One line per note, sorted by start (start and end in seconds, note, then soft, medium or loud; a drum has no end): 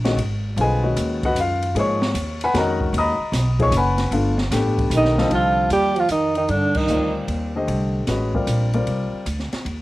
0.00 0.16 A#1 loud
0.05 0.16 D#3 medium
0.05 0.16 G#3 medium
0.05 0.17 C#4 medium
0.05 0.17 F#4 medium
0.05 snare medium
0.05 ride medium
0.17 0.55 G#1 medium
0.17 ride medium
0.56 0.95 B1 medium
0.56 0.81 D3 medium
0.56 0.81 G3 soft
0.56 0.81 C4 soft
0.56 0.81 F4 medium
0.56 ride medium
0.61 1.21 G#4 medium
0.61 1.21 B4 medium
0.61 1.21 D#5 medium
0.61 1.21 G#5 medium
0.83 1.67 D#3 medium
0.83 1.68 G#3 medium
0.83 1.68 C#4 medium
0.83 1.24 F#4 medium
0.96 1.34 D#2 loud
0.96 hi-hat pedal medium
0.96 ride medium
1.23 1.37 F#4 medium
1.23 1.37 B4 medium
1.23 1.37 D#5 medium
1.23 1.37 F#5 loud
1.23 kick medium
1.23 ride medium
1.35 1.74 F#2 medium
1.35 hi-hat pedal medium
1.35 ride medium
1.40 1.75 F4 medium
1.40 1.75 F5 medium
1.62 ride medium
1.75 2.13 G#2 loud
1.75 1.99 F3 medium
1.75 1.99 A#3 medium
1.75 1.99 D#4 medium
1.75 2.00 G#4 medium
1.75 ride medium
1.79 2.40 C#5 medium
1.79 2.39 C#6 loud
2.02 snare medium
2.14 2.53 D#2 loud
2.14 hi-hat pedal medium
2.14 ride medium
2.41 2.56 B4 medium
2.41 2.55 F#5 medium
2.41 2.55 G#5 medium
2.41 2.55 B5 loud
2.41 ride medium
2.54 2.92 F2 medium
2.54 3.15 D#3 medium
2.54 3.15 G#3 medium
2.54 3.15 C#4 medium
2.54 3.15 F#4 medium
2.54 2.93 A#5 medium
2.54 snare soft
2.54 ride medium
2.58 2.93 A#4 medium
2.58 2.93 D#5 medium
2.58 2.93 F#5 medium
2.81 kick medium
2.93 3.18 D#2 loud
2.93 ride medium
2.98 3.58 D#5 medium
2.98 3.58 A#5 medium
2.98 3.58 B5 medium
2.98 3.58 D#6 loud
3.18 muted upright bass stroke soft
3.32 3.71 B1 loud
3.32 snare soft
3.32 hi-hat pedal medium
3.32 ride medium
3.59 3.71 F3 medium
3.59 3.71 A#3 medium
3.59 3.71 D#4 medium
3.59 3.72 G#4 medium
3.59 3.74 C#5 medium
3.59 3.74 C#6 loud
3.59 kick medium
3.59 ride medium
3.71 4.10 F#1 loud
3.71 hi-hat pedal medium
3.71 ride medium
3.77 4.12 B4 medium
3.77 4.12 F#5 medium
3.77 4.12 G#5 medium
3.77 4.11 B5 loud
3.98 snare soft
3.98 ride medium
4.11 4.50 G1 loud
4.11 4.36 A3 medium
4.11 4.36 B3 medium
4.11 4.36 D4 medium
4.11 4.36 F4 medium
4.11 ride medium
4.38 snare soft
4.51 4.90 A1 loud
4.51 5.12 A3 medium
4.51 5.12 B3 medium
4.51 5.12 D4 medium
4.51 5.13 G4 medium
4.51 snare soft
4.51 hi-hat pedal medium
4.51 ride medium
4.78 kick medium
4.78 ride medium
4.90 5.29 B1 medium
4.90 hi-hat pedal medium
4.90 ride medium
4.94 5.30 D#3 medium
4.94 5.31 D#4 medium
5.05 snare soft
5.18 5.68 D3 medium
5.18 5.68 G3 medium
5.18 5.68 C4 medium
5.18 5.68 F4 medium
5.18 5.68 A4 medium
5.18 snare medium
5.30 5.69 C2 medium
5.30 5.68 F3 medium
5.30 ride medium
5.35 5.70 F4 medium
5.69 6.08 D#2 medium
5.69 5.99 G3 medium
5.69 6.01 G4 loud
5.69 hi-hat pedal soft
5.69 ride medium
5.96 6.10 F3 medium
5.96 6.11 F4 medium
5.96 ride soft
6.09 6.48 F2 medium
6.09 6.35 D#3 medium
6.09 6.35 D#4 medium
6.09 hi-hat pedal medium
6.09 ride medium
6.35 6.51 D#3 medium
6.35 6.52 D#4 medium
6.35 ride soft
6.49 6.87 G2 medium
6.49 6.78 D3 medium
6.49 6.79 D4 medium
6.49 ride medium
6.75 7.16 D#3 medium
6.75 7.16 D#4 medium
6.75 kick medium
6.75 crash medium
6.88 7.27 D2 medium
6.88 7.50 G3 medium
6.88 7.50 C4 soft
6.88 7.50 F4 medium
6.88 7.50 A#4 soft
6.88 7.50 D5 medium
6.88 hi-hat pedal medium
7.27 7.66 D#2 medium
7.27 ride medium
7.56 8.06 D3 medium
7.56 8.06 A3 medium
7.56 8.06 G4 medium
7.56 8.06 C5 medium
7.56 8.06 D#5 medium
7.67 8.06 C2 medium
7.67 ride medium
8.07 8.46 A1 medium
8.07 8.32 G#3 medium
8.07 8.32 C#4 medium
8.07 8.32 F#4 medium
8.07 8.32 B4 medium
8.07 8.32 D#5 medium
8.07 snare soft
8.07 hi-hat pedal medium
8.07 ride medium
8.34 8.69 G3 medium
8.34 8.69 C4 medium
8.34 8.69 F4 medium
8.34 8.69 A#4 medium
8.34 8.69 D5 medium
8.34 kick medium
8.47 8.85 A#1 medium
8.47 hi-hat pedal medium
8.47 ride medium
8.73 9.24 G3 medium
8.73 9.24 C4 medium
8.73 9.24 F4 medium
8.73 9.24 A#4 medium
8.73 9.24 D5 medium
8.73 ride soft
8.87 9.11 C2 medium
8.87 ride medium
9.13 muted upright bass stroke soft
9.26 9.51 D2 medium
9.26 hi-hat pedal medium
9.26 ride medium
9.39 snare soft
9.53 muted upright bass stroke soft
9.53 snare soft
9.53 ride soft
9.65 9.82 D#2 medium
9.65 ride medium